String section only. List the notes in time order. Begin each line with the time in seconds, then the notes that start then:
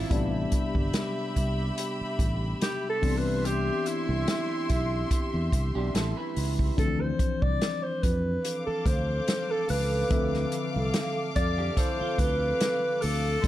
0.11 G4 E5 B5
3.03 G4 E5 C6
8.44 A4 F5 D6
13.43 G4 E5 C6